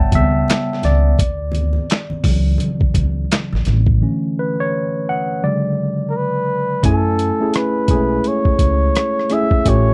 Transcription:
0.00 0.15 C#3 medium
0.00 0.15 G3 soft
0.00 0.15 B3 medium
0.00 1.20 C#5 medium
0.00 0.85 D5 medium
0.00 0.15 E5 medium
0.00 1.20 F#5 medium
0.00 1.20 G5 loud
0.00 0.11 A5 loud
0.12 0.41 C#2 medium
0.12 0.45 C#3 soft
0.12 0.46 G3 soft
0.12 0.46 B3 medium
0.12 0.87 E5 medium
0.12 kick medium
0.12 closed hi-hat medium
0.12 muted conga soft
0.12 high conga medium
0.48 snare medium
0.48 clap medium
0.48 closed hi-hat medium
0.48 muted conga soft
0.73 snare soft
0.83 1.12 C#2 medium
0.83 2.56 D5 medium
0.83 snare soft
0.83 closed hi-hat medium
0.83 muted conga soft
0.83 high conga medium
1.18 1.76 D2 medium
1.18 kick loud
1.18 closed hi-hat medium
1.18 muted conga soft
1.52 closed hi-hat medium
1.52 muted conga soft
1.52 high conga medium
1.73 high conga medium
1.90 snare medium
1.90 clap medium
1.90 closed hi-hat medium
2.10 muted upright bass stroke soft
2.10 high conga medium
2.24 2.53 C#2 medium
2.24 2.75 C#3 medium
2.24 2.74 E3 medium
2.24 2.75 F#3 medium
2.24 kick medium
2.24 open hi-hat soft
2.24 muted conga soft
2.24 low conga medium
2.58 closed hi-hat medium
2.58 muted conga soft
2.58 high conga soft
2.58 low conga medium
2.81 muted upright bass stroke soft
2.81 kick medium
2.94 3.23 C#2 medium
2.94 kick medium
2.94 closed hi-hat medium
2.94 high conga medium
3.31 snare medium
3.31 clap medium
3.31 closed hi-hat medium
3.31 muted conga soft
3.52 3.63 A1 medium
3.52 snare soft
3.65 4.01 A1 medium
3.65 snare soft
3.65 closed hi-hat medium
3.65 muted conga soft
3.65 high conga medium
3.86 kick medium
4.02 5.38 D3 medium
4.02 5.38 E3 soft
4.02 5.39 A3 medium
4.02 5.39 C#4 medium
4.39 4.60 B4 medium
4.60 5.05 C#5 medium
5.09 5.44 F#5 loud
5.43 5.93 C#3 medium
5.43 5.92 D3 medium
5.43 5.92 F#3 medium
5.43 5.93 G#3 medium
5.43 6.45 D5 medium
6.10 6.18 A#4 medium
6.17 6.85 B4 medium
6.83 7.29 F#2 medium
6.83 7.34 A3 medium
6.83 7.34 C#4 medium
6.83 7.34 E4 medium
6.83 7.58 A4 medium
6.83 7.35 G#5 medium
6.83 kick medium
6.83 closed hi-hat medium
7.19 closed hi-hat medium
7.40 7.85 A3 medium
7.40 7.86 C#4 medium
7.40 7.86 E4 medium
7.40 7.86 G#4 medium
7.54 8.29 B4 medium
7.54 cross-stick medium
7.54 closed hi-hat medium
7.88 8.17 B1 medium
7.88 7.97 G#3 soft
7.88 9.20 C#4 medium
7.88 9.20 E4 medium
7.88 9.21 G#4 medium
7.88 kick medium
7.88 closed hi-hat medium
7.95 9.23 A3 medium
8.24 9.34 C#5 medium
8.24 closed hi-hat medium
8.45 muted upright bass stroke soft
8.45 kick medium
8.59 8.88 C#2 medium
8.59 kick medium
8.59 closed hi-hat medium
8.95 cross-stick medium
8.95 closed hi-hat medium
9.19 cross-stick soft
9.30 9.63 A3 medium
9.30 9.63 C#4 medium
9.30 9.63 E4 medium
9.30 9.64 G#4 medium
9.30 9.70 E5 medium
9.30 cross-stick soft
9.30 closed hi-hat medium
9.51 kick medium
9.65 9.94 A1 medium
9.65 9.94 A3 medium
9.65 9.94 C#4 medium
9.65 9.94 F4 medium
9.65 9.94 G4 medium
9.65 9.94 C#5 medium
9.65 kick medium
9.65 closed hi-hat medium

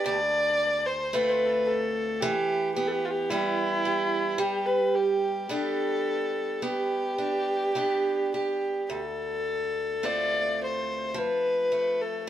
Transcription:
0.00 0.16 B3 medium
0.00 1.13 D4 medium
0.00 0.16 G4 medium
0.06 2.31 D2 medium
0.06 0.87 D5 medium
0.86 1.15 C5 medium
1.13 2.32 A3 medium
1.13 2.31 C4 medium
1.13 2.32 F4 medium
1.13 1.30 B4 medium
1.29 1.47 B4 medium
1.29 1.34 C5 medium
1.46 1.49 A4 medium
1.46 1.67 B4 medium
1.66 2.22 A4 medium
2.21 4.38 E3 medium
2.21 2.74 G4 medium
2.75 3.31 B3 medium
2.75 2.89 G4 medium
2.87 2.93 A4 medium
2.92 3.07 G4 medium
3.05 3.11 F4 medium
3.10 3.31 G4 medium
3.29 4.38 G3 soft
3.29 5.49 B3 soft
3.29 4.41 E4 medium
3.29 3.85 G4 medium
3.85 5.51 G4 medium
4.38 8.89 G3 medium
4.38 4.67 G4 medium
4.66 4.96 B4 medium
4.95 5.52 G4 medium
5.49 6.61 B3 soft
5.49 7.18 D4 medium
5.49 7.75 G4 medium
5.49 6.64 A4 medium
6.62 7.74 B3 medium
6.62 8.33 G4 medium
7.18 7.75 D4 soft
7.75 9.00 B3 soft
7.75 10.03 D4 soft
7.75 8.33 G4 soft
8.34 9.01 G4 soft
8.34 8.86 G4 medium
8.90 11.27 D2 medium
8.90 10.07 A4 medium
10.03 11.71 A3 soft
10.03 12.27 C4 soft
10.03 12.28 F4 soft
10.03 10.61 D5 medium
10.64 11.19 C5 medium
11.14 12.29 F3 medium
11.14 12.03 B4 medium
11.72 12.27 A3 soft
12.01 12.21 A4 medium
12.21 12.29 A4 medium

